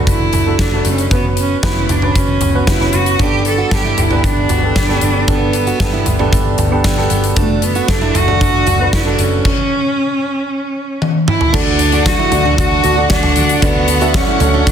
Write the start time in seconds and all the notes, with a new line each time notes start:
Already playing: A3 D4 F#4 A4 B4
0.07 F#1 E4, kick, closed hi-hat
0.33 F#1, closed hi-hat, floor tom
0.46 A3 D4 F#4 A4
0.59 F#1 D4, kick, snare, closed hi-hat
0.72 A3 D4 F#4 A4
0.85 F#1 C#4, closed hi-hat
0.98 closed hi-hat
1.11 F#1 B3 C#4 F#4 B4, kick, closed hi-hat
1.37 C#4, closed hi-hat
1.63 F#1 B3 C#4 E4 F#4 B4, kick, snare, closed hi-hat
1.89 F#1 D4, closed hi-hat, floor tom
2.02 B3 C#4 F#4 B4, floor tom
2.16 F#1 C#4, kick, closed hi-hat
2.41 F#1, closed hi-hat, floor tom
2.54 B3 C#4 F#4 B4
2.67 F#1 E4, kick, snare, closed hi-hat
2.80 B3 C#4 F#4 B4, snare
2.93 F#1 F#4, closed hi-hat
3.06 closed hi-hat
3.19 G1 G2 B3 D4 G4 A4, kick, closed hi-hat
3.45 A4, closed hi-hat
3.58 F#4
3.71 G1 B3 D4 G4 A4, kick, snare, closed hi-hat
3.85 E4
3.98 G1 E4, closed hi-hat, floor tom
4.10 B3 D4 G4 B4, floor tom
4.24 G1 D4, kick, closed hi-hat
4.49 G1 F#4, closed hi-hat, floor tom
4.63 B3 D4 G4 A4
4.76 G1, kick, snare, closed hi-hat
4.88 B3 D4 G4 A4, snare
5.01 G1, closed hi-hat
5.27 G1 G2 B3 D4 G4 A4, kick, closed hi-hat
5.53 closed hi-hat
5.67 F#4, closed hi-hat
5.79 G1 B3 D4 G4 A4, kick, snare, closed hi-hat
5.93 E4
6.06 G1, closed hi-hat, floor tom
6.19 B3 D4 G4 A4, floor tom
6.33 G1, kick, closed hi-hat
6.58 G1, closed hi-hat, floor tom
6.71 B3 D4 G4 A4
6.84 G1 D4, kick, snare, closed hi-hat
6.97 B3 D4 G4 A4, snare
7.10 G1 B3, closed hi-hat
7.24 closed hi-hat
7.36 F#1 A3 D4 F#4 A4, kick, closed hi-hat
7.62 B3, closed hi-hat
7.75 F#4, closed hi-hat
7.88 F#1 A3 D4 F#4 A4, kick, snare, closed hi-hat
8.02 E4
8.15 F#1 F#4, closed hi-hat, floor tom
8.27 A3 D4 F#4 A4, floor tom
8.41 F#1 D4, kick, closed hi-hat
8.67 F#1 F#4, closed hi-hat, floor tom
8.79 A3 D4 F#4 B4
8.93 F#1 E4, kick, snare, closed hi-hat
9.05 A3 D4 F#4 A4
9.19 F#1 C#4, closed hi-hat
9.45 kick, crash
11.02 high tom
11.28 E4, mid tom
11.41 floor tom
11.53 D2 D3 A3 D4 F#4 A4 D5 F#5, kick, crash
11.79 closed hi-hat
11.92 A3 D4 F#4 A4 D5, closed hi-hat
12.06 F#4, kick, snare, closed hi-hat
12.19 E4
12.31 D2 A3 D4 F#4 A4 D5, closed hi-hat, floor tom
12.45 D4
12.58 D2 D4 F#4, kick, closed hi-hat
12.83 D2 A3 D4 F#4 A4 D5, closed hi-hat
12.96 A3 D4 F#4 A4 D5
13.10 D2 D4, kick, snare, closed hi-hat
13.23 snare, floor tom
13.36 D2, closed hi-hat
13.49 closed hi-hat
13.62 D2 D3 A3 B3 D4 F#4 A4 D5, kick, closed hi-hat
13.88 closed hi-hat
14.01 A3 D4 F#4 A4 E5, closed hi-hat
14.14 C#4, kick, snare, closed hi-hat
14.28 E4
14.40 D2 A3 D4 F#4 A4 C#5, closed hi-hat, floor tom
14.54 D4
14.67 D2 D4, kick, closed hi-hat